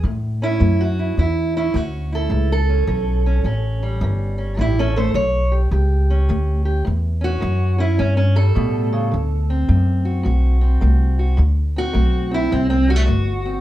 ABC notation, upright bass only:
X:1
M:4/4
L:1/8
Q:"Swing" 1/4=106
K:Amix
V:1 name="Upright bass" clef=bass
A,,2 F,,2 E,,2 D,,2 | C,,2 B,,,2 A,,,2 G,,,2 | A,,,2 B,,,2 C,,2 D,,2 | E,,2 F,,2 G,,2 A,,2 |
D,,2 F,,2 B,,,2 =C,,2 | D,,2 B,,,2 =C,,2 G,,,2 |]